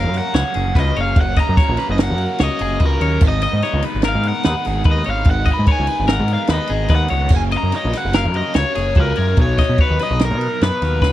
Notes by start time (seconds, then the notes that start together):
Already playing: F#2 F#3 A#3 C#4 A#4 F5
0.04 F#2
0.14 snare, ride
0.18 F#5
0.33 C#2 F#2 C#3 F#3 A#3 C#4 C#5, snare, ride
0.54 F#1 F#3 A#3 C#4 G#4, ride
0.75 C#2 F#2 C#3 F#3 A#3 C#4 B4, kick, snare, ride
0.79 D#5
0.95 F#1 F#3 A#3 C#4 C#5, ride
1.01 F5
1.16 F#1 F#2 C#3 F#3 A#3 C#4, kick, ride
1.21 F#5
1.36 F#3 A#3 C#4 D#5, kick, snare, ride
1.40 A#5
1.49 F#2
1.57 C#3 F#3 A#3 C#4 C#5, kick, snare, ride
1.69 A#1
1.77 F#3 A#3 C#4 B4, snare, ride
1.89 F#1 D#5
1.98 A#4, snare, ride
2.03 F#5
2.10 F#2
2.18 ride
2.38 C#2 F#2 C#3 F#3 A#3 C#4 C#5, snare, ride
2.44 D#5
2.59 F#1 A#3 C#4 G#4, ride
2.63 F#3
2.80 C#2 F#2 C#3 F#3 A#3 C#4 B4, kick, ride
2.85 A#4
3.01 D#2 F#3 A#3 C#4 C#5, ride
3.21 G#1 G#2 D#3 G#3 B3 D#4, kick, crash
3.28 D#5
3.42 G#3 B3 D#4 D#5, snare, ride
3.53 G#2
3.62 D#3 G#3 B3 D#4 C#5, snare, ride
3.73 C#2
3.82 D#4 B4, ride
3.87 G#3 B3
3.95 G#1
4.02 A#4, snare, ride
4.08 F5
4.15 G#2
4.23 ride
4.28 F#5
4.43 D#2 G#2 D#3 G#3 B4, snare, ride
4.47 B3 D#4
4.65 G#1 G#3 B3 D#4 G#4, snare, ride
4.84 D#2 G#2 D#3 G#3 B4, kick, ride
4.88 B3 D#4 D#5
5.04 G#1 B3 D#4 C#5, ride
5.08 G#3 F5
5.25 G#1 G#2 D#3 G#3, kick, ride
5.29 B3 D#4 F#5
5.45 G#3 B3 D#4 D#5, kick, ride
5.54 B5
5.59 G#2
5.66 D#3 G#3 B3 D#4 C#5, kick, ride
5.72 G#5
5.79 C#2
5.87 G#3 B3 D#4 B4, ride
6.00 G#1
6.07 A#4, snare, ride
6.12 F#5
6.19 G#2
6.28 ride
6.33 F5
6.47 D#2 G#2 D#3 B4, snare, ride
6.51 G#3 B3 D#4 D#5
6.67 G#1 D#4 G#4, ride
6.71 G#3 B3
6.88 D#2 G#2 D#3 G#3 B3 D#4 B4, kick, snare, ride
6.95 F#5
7.08 C#2 B3 D#4 C#5, ride
7.13 G#3
7.29 F#1 F#2 C#3, kick, crash
7.33 F#3 A#3 C#4 G#5
7.51 A#3 C#4 D#5, snare, ride
7.56 F#3 A#5
7.63 F#2
7.72 C#3 F#3 A#3 C#4 C#5 D#5, snare, ride
7.85 A#1
7.93 F#3 A#3 C#4 B4, snare, ride
7.97 F#5
8.05 F#1
8.13 A#4, snare, ride
8.18 F5
8.25 F#2
8.34 D#5, ride
8.54 C#2 F#2 C#3 F#3 A#3 C#5, snare, ride
8.58 C#4 C#5
8.75 F#1 F#3 A#3 C#4 G#4, snare, ride
8.95 C#2 F#2 C#3 F#3 A#3 C#4 B4, kick, ride
9.00 A#4
9.16 F#2 A#3 C#4 C#5, ride
9.20 F#3
9.37 B1 B2 F#3 B3 D#4, kick, ride
9.41 C#5
9.58 F#3 B3 D#4 D#5, kick, snare, ride
9.69 B2
9.78 B2 F#3 B3 B4 C#5, kick, ride
9.82 D#4
9.90 D#2
9.99 F#3 B3 D#4 B4 D#5, snare, ride
10.11 B1
10.19 A#4, snare, ride
10.25 A#4
10.31 B2
10.41 ride
10.60 F#2 B2 F#3 B3 D#4 B4, snare, ride
10.65 B4
10.82 D#2 F#3 B3 D#4 A#4, snare, ride
11.01 C#2 B2 F#3 B3 D#4 B4, kick, snare